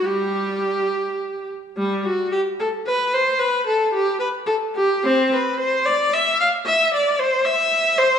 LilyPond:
\new Staff \with { instrumentName = "Viola" } { \time 6/8 \key g \major \tempo 4. = 74 << { g'2~ g'8 r8 | g8 fis'8 g'8 a'8 b'8 c''8 | b'8 a'8 g'8 b'8 a'8 g'8 | c'8 b'8 c''8 d''8 e''8 f''8 |
e''8 d''8 c''8 e''4 c''8 | } \\ { g4. r4. | r2. | r2. | r2. |
r2. | } >> }